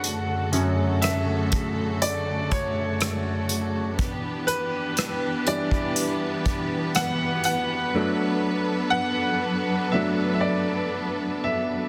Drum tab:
HH |x-x-x-x-x-x-x-x-|x-x-x-x-x-x-x-x-|----------------|
SD |----r-------r---|----r-------r---|----------------|
BD |------o---o-----|o------o--o-----|----------------|